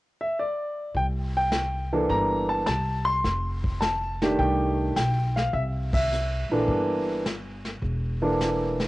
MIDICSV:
0, 0, Header, 1, 4, 480
1, 0, Start_track
1, 0, Tempo, 573614
1, 795, Time_signature, 4, 2, 24, 8
1, 7429, End_track
2, 0, Start_track
2, 0, Title_t, "Grand piano"
2, 0, Program_c, 0, 0
2, 174, Note_on_c, 0, 76, 70
2, 309, Note_off_c, 0, 76, 0
2, 329, Note_on_c, 0, 74, 77
2, 768, Note_off_c, 0, 74, 0
2, 808, Note_on_c, 0, 79, 87
2, 881, Note_off_c, 0, 79, 0
2, 1145, Note_on_c, 0, 79, 89
2, 1612, Note_on_c, 0, 52, 62
2, 1613, Note_on_c, 0, 58, 51
2, 1614, Note_on_c, 0, 62, 58
2, 1616, Note_on_c, 0, 69, 68
2, 1757, Note_on_c, 0, 82, 94
2, 1781, Note_off_c, 0, 79, 0
2, 2063, Note_off_c, 0, 82, 0
2, 2084, Note_on_c, 0, 81, 84
2, 2206, Note_off_c, 0, 52, 0
2, 2207, Note_off_c, 0, 58, 0
2, 2207, Note_off_c, 0, 62, 0
2, 2208, Note_off_c, 0, 69, 0
2, 2216, Note_off_c, 0, 81, 0
2, 2229, Note_on_c, 0, 81, 93
2, 2552, Note_on_c, 0, 84, 113
2, 2571, Note_off_c, 0, 81, 0
2, 3186, Note_on_c, 0, 81, 87
2, 3205, Note_off_c, 0, 84, 0
2, 3531, Note_on_c, 0, 51, 70
2, 3531, Note_on_c, 0, 57, 59
2, 3538, Note_on_c, 0, 62, 61
2, 3541, Note_on_c, 0, 67, 73
2, 3672, Note_on_c, 0, 79, 90
2, 3682, Note_off_c, 0, 81, 0
2, 4118, Note_off_c, 0, 79, 0
2, 4125, Note_off_c, 0, 51, 0
2, 4125, Note_off_c, 0, 57, 0
2, 4129, Note_off_c, 0, 62, 0
2, 4130, Note_off_c, 0, 67, 0
2, 4153, Note_on_c, 0, 79, 81
2, 4486, Note_on_c, 0, 77, 82
2, 4493, Note_off_c, 0, 79, 0
2, 4629, Note_on_c, 0, 76, 82
2, 4637, Note_off_c, 0, 77, 0
2, 4704, Note_off_c, 0, 76, 0
2, 4969, Note_on_c, 0, 76, 76
2, 5412, Note_off_c, 0, 76, 0
2, 5450, Note_on_c, 0, 52, 64
2, 5450, Note_on_c, 0, 58, 57
2, 5452, Note_on_c, 0, 69, 71
2, 5454, Note_on_c, 0, 62, 61
2, 6045, Note_off_c, 0, 52, 0
2, 6045, Note_off_c, 0, 58, 0
2, 6047, Note_off_c, 0, 69, 0
2, 6048, Note_off_c, 0, 62, 0
2, 6876, Note_on_c, 0, 52, 61
2, 6877, Note_on_c, 0, 58, 55
2, 6880, Note_on_c, 0, 62, 59
2, 6881, Note_on_c, 0, 69, 67
2, 7429, Note_off_c, 0, 52, 0
2, 7429, Note_off_c, 0, 58, 0
2, 7429, Note_off_c, 0, 62, 0
2, 7429, Note_off_c, 0, 69, 0
2, 7429, End_track
3, 0, Start_track
3, 0, Title_t, "Upright bass"
3, 0, Program_c, 1, 32
3, 791, Note_on_c, 1, 36, 76
3, 1718, Note_off_c, 1, 36, 0
3, 1752, Note_on_c, 1, 31, 88
3, 2198, Note_off_c, 1, 31, 0
3, 2234, Note_on_c, 1, 36, 75
3, 2679, Note_off_c, 1, 36, 0
3, 2711, Note_on_c, 1, 29, 84
3, 3637, Note_off_c, 1, 29, 0
3, 3670, Note_on_c, 1, 36, 86
3, 4116, Note_off_c, 1, 36, 0
3, 4152, Note_on_c, 1, 35, 78
3, 4597, Note_off_c, 1, 35, 0
3, 4627, Note_on_c, 1, 36, 83
3, 5407, Note_off_c, 1, 36, 0
3, 5435, Note_on_c, 1, 34, 66
3, 5577, Note_off_c, 1, 34, 0
3, 5585, Note_on_c, 1, 31, 86
3, 6516, Note_off_c, 1, 31, 0
3, 6542, Note_on_c, 1, 28, 78
3, 7429, Note_off_c, 1, 28, 0
3, 7429, End_track
4, 0, Start_track
4, 0, Title_t, "Drums"
4, 791, Note_on_c, 9, 25, 43
4, 793, Note_on_c, 9, 36, 32
4, 876, Note_off_c, 9, 36, 0
4, 1271, Note_on_c, 9, 38, 60
4, 1271, Note_on_c, 9, 44, 58
4, 1354, Note_off_c, 9, 38, 0
4, 1355, Note_off_c, 9, 44, 0
4, 1754, Note_on_c, 9, 36, 31
4, 1755, Note_off_c, 9, 25, 0
4, 1755, Note_on_c, 9, 25, 50
4, 1838, Note_off_c, 9, 36, 0
4, 2230, Note_on_c, 9, 38, 58
4, 2230, Note_on_c, 9, 44, 49
4, 2313, Note_off_c, 9, 38, 0
4, 2314, Note_off_c, 9, 44, 0
4, 2714, Note_on_c, 9, 36, 32
4, 2715, Note_off_c, 9, 25, 0
4, 2715, Note_on_c, 9, 25, 51
4, 2715, Note_on_c, 9, 38, 37
4, 2798, Note_off_c, 9, 36, 0
4, 2798, Note_off_c, 9, 38, 0
4, 3047, Note_on_c, 9, 36, 50
4, 3130, Note_off_c, 9, 36, 0
4, 3194, Note_on_c, 9, 38, 62
4, 3195, Note_on_c, 9, 44, 50
4, 3278, Note_off_c, 9, 38, 0
4, 3279, Note_off_c, 9, 44, 0
4, 3529, Note_on_c, 9, 38, 38
4, 3612, Note_off_c, 9, 38, 0
4, 3674, Note_on_c, 9, 36, 30
4, 3680, Note_off_c, 9, 25, 0
4, 3680, Note_on_c, 9, 25, 45
4, 3758, Note_off_c, 9, 36, 0
4, 4153, Note_on_c, 9, 38, 58
4, 4154, Note_on_c, 9, 44, 66
4, 4237, Note_off_c, 9, 38, 0
4, 4238, Note_off_c, 9, 44, 0
4, 4493, Note_on_c, 9, 38, 37
4, 4577, Note_off_c, 9, 38, 0
4, 4632, Note_on_c, 9, 36, 31
4, 4635, Note_off_c, 9, 25, 0
4, 4635, Note_on_c, 9, 25, 48
4, 4715, Note_off_c, 9, 36, 0
4, 4963, Note_on_c, 9, 36, 83
4, 4967, Note_on_c, 9, 51, 72
4, 5047, Note_off_c, 9, 36, 0
4, 5051, Note_off_c, 9, 51, 0
4, 5121, Note_on_c, 9, 44, 62
4, 5205, Note_off_c, 9, 44, 0
4, 5589, Note_on_c, 9, 36, 31
4, 5597, Note_off_c, 9, 25, 0
4, 5597, Note_on_c, 9, 25, 47
4, 5673, Note_off_c, 9, 36, 0
4, 6073, Note_on_c, 9, 38, 62
4, 6074, Note_on_c, 9, 44, 62
4, 6157, Note_off_c, 9, 38, 0
4, 6157, Note_off_c, 9, 44, 0
4, 6400, Note_on_c, 9, 38, 37
4, 6483, Note_off_c, 9, 38, 0
4, 6547, Note_on_c, 9, 36, 32
4, 6554, Note_off_c, 9, 25, 0
4, 6554, Note_on_c, 9, 25, 44
4, 6631, Note_off_c, 9, 36, 0
4, 7035, Note_on_c, 9, 38, 56
4, 7036, Note_on_c, 9, 44, 65
4, 7119, Note_off_c, 9, 38, 0
4, 7120, Note_off_c, 9, 44, 0
4, 7361, Note_on_c, 9, 38, 37
4, 7429, Note_off_c, 9, 25, 0
4, 7429, Note_off_c, 9, 38, 0
4, 7429, End_track
0, 0, End_of_file